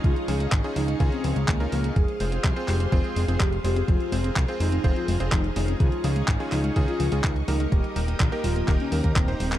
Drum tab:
HH |xxoxxxoxxxoxxxox|xxoxxxoxxxoxxxox|xxoxxxoxxxoxxxox|xxoxxxoxxxoxxxox|
CP |----x-------x---|----x-x-----x---|----x-------x---|----x-x-----x---|
BD |o---o---o---o---|o---o---o---o---|o---o---o---o---|o---o---o---o---|

HH |xxoxxxoxxxoxxxox|
CP |----x---x---x--x|
BD |o---o---o--oo---|